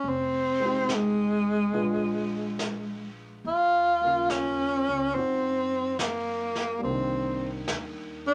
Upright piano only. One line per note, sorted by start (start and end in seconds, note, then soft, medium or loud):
0.60 1.72 G#3 soft
0.60 1.73 C4 soft
0.60 1.74 D#4 soft
0.65 1.75 G4 soft
1.73 3.44 G#3 soft
1.73 3.44 B3 soft
1.73 3.44 D4 soft
1.73 3.44 F4 soft
4.01 6.84 C#3 soft
4.01 6.82 F#3 soft
4.01 6.81 A#3 soft
4.06 6.85 F4 soft
5.14 6.83 C4 soft
5.14 6.84 D#4 soft
5.14 6.84 F#4 soft
6.79 8.34 G3 soft
6.79 8.34 A#3 soft
6.86 8.34 D#3 medium
6.86 8.34 D4 soft